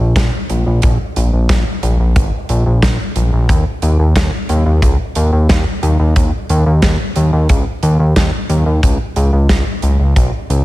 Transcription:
0.00 analog synth bass A#1
0.16 analog synth bass A#1, kick, snare, closed hi-hat
0.50 analog synth bass A#1, closed hi-hat
0.66 analog synth bass A#1
0.82 analog synth bass A#1, kick, closed hi-hat
1.16 analog synth bass A#1, closed hi-hat
1.33 analog synth bass A#1
1.49 analog synth bass A#1, kick, snare, closed hi-hat
1.83 analog synth bass A#1, closed hi-hat
1.99 analog synth bass A#1
2.16 analog synth bass G#1, kick, closed hi-hat
2.49 analog synth bass A#1, closed hi-hat
2.66 analog synth bass A#1
2.82 analog synth bass A#1, kick, snare, closed hi-hat
3.16 analog synth bass A#1, closed hi-hat
3.33 analog synth bass A#1
3.49 analog synth bass D#2, kick, closed hi-hat
3.82 analog synth bass D#2, closed hi-hat
3.99 analog synth bass D#2
4.16 analog synth bass D#2, kick, snare, closed hi-hat
4.49 analog synth bass D#2, closed hi-hat
4.66 analog synth bass D#2
4.82 analog synth bass C#2, kick, closed hi-hat
5.15 analog synth bass D#2, closed hi-hat
5.33 analog synth bass D#2
5.49 analog synth bass D#2, kick, snare, closed hi-hat
5.83 analog synth bass D#2, closed hi-hat
6.00 analog synth bass D#2
6.16 analog synth bass D#2, kick, closed hi-hat
6.50 analog synth bass D#2, closed hi-hat
6.66 analog synth bass D#2
6.82 analog synth bass D#2, kick, snare, closed hi-hat
7.16 analog synth bass D#2, closed hi-hat
7.33 analog synth bass D#2
7.49 analog synth bass C#2, kick, closed hi-hat
7.83 analog synth bass D#2, closed hi-hat
7.99 analog synth bass D#2
8.16 analog synth bass D#2, kick, snare, closed hi-hat
8.49 analog synth bass D#2, closed hi-hat
8.66 analog synth bass D#2
8.83 analog synth bass C#2, kick, closed hi-hat
9.16 analog synth bass C#2, closed hi-hat
9.33 analog synth bass C#2
9.49 analog synth bass C#2, kick, snare, closed hi-hat
9.82 analog synth bass C#2, closed hi-hat
10.00 analog synth bass C#2
10.16 analog synth bass B1, kick, closed hi-hat
10.50 analog synth bass C#2, closed hi-hat

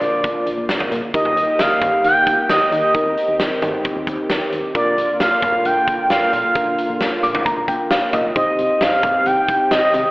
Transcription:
Already playing: analog synth pad D3 A#3 F4, fm electric piano D4 F4 A#4, analog synth lead D5
0.01 fm bass A#1, closed hi-hat
0.24 fm bass A#1, kick, closed hi-hat
0.46 fm bass A#1, closed hi-hat
0.58 fm bass A#1
0.69 fm bass A#1, snare, closed hi-hat
0.80 mid tom
0.92 fm bass A#2, closed hi-hat
1.14 fm bass D#2, analog synth pad D#3 A#3 G4, fm electric piano D#4 G4 A#4, analog synth lead D#5, kick, closed hi-hat
1.25 mid tom
1.37 fm bass D#2, closed hi-hat
1.59 fm bass D#2, analog synth lead F5, snare, closed hi-hat
1.82 fm bass D#2, kick, closed hi-hat, mid tom
2.04 fm bass D#2, analog synth lead G5, closed hi-hat
2.27 fm bass D#2, kick, closed hi-hat
2.49 fm bass D#2, analog synth lead D#5, snare, closed hi-hat
2.61 analog synth lead D#5
2.72 fm bass D#3, analog synth lead D#5, closed hi-hat
2.94 fm bass D#2, analog synth pad C4, fm electric piano D#4 G4 A#4, kick, closed hi-hat
3.06 fm bass D#2
3.17 closed hi-hat
3.28 fm bass D#2
3.39 fm bass D#2, snare, closed hi-hat
3.62 fm bass D#3, closed hi-hat, mid tom
3.84 kick, closed hi-hat
3.96 fm bass D#2
4.07 fm bass D#2, kick, closed hi-hat
4.30 fm bass D#2, snare, closed hi-hat
4.52 fm bass D#2, closed hi-hat
4.75 fm bass A#1, analog synth pad D3 A#3 F4, fm electric piano D4 F4 A#4, analog synth lead D5, kick, closed hi-hat
4.97 fm bass A#1, closed hi-hat
5.20 fm bass A#1, analog synth lead F5, snare, closed hi-hat
5.42 fm bass A#1, kick, closed hi-hat, mid tom
5.65 fm bass A#1, analog synth lead G5, closed hi-hat
5.88 fm bass A#1, kick, closed hi-hat
6.10 fm bass A#1, analog synth lead F5, snare, closed hi-hat
6.21 analog synth lead F5
6.33 fm bass A#2, analog synth lead F5, closed hi-hat
6.55 fm bass A#1, fm electric piano D4 F4 A#4, kick, closed hi-hat
6.67 fm bass A#1
6.78 closed hi-hat
6.89 fm bass A#1
7.00 fm bass A#1, snare, closed hi-hat
7.23 fm bass A#2, fm electric piano D6, closed hi-hat
7.35 mid tom
7.45 fm electric piano A#5, kick, closed hi-hat
7.57 fm bass A#1
7.68 fm bass A#1, fm electric piano G5, kick, closed hi-hat
7.91 fm bass A#1, fm electric piano F5, snare, closed hi-hat
8.13 fm bass A#1, fm electric piano D#5, closed hi-hat, mid tom
8.36 fm bass C2, analog synth pad D#3 C4 G4, fm electric piano D#4 G4 C5, analog synth lead D#5, kick, closed hi-hat
8.59 fm bass C2, closed hi-hat
8.81 fm bass C2, analog synth lead F5, snare, closed hi-hat
9.03 fm bass C2, kick, closed hi-hat, mid tom
9.26 fm bass C2, analog synth lead G5, closed hi-hat
9.48 fm bass C2, kick, closed hi-hat
9.71 fm bass C2, analog synth lead D#5, snare, closed hi-hat
9.83 analog synth lead D#5
9.94 fm bass C3, analog synth lead D#5, closed hi-hat

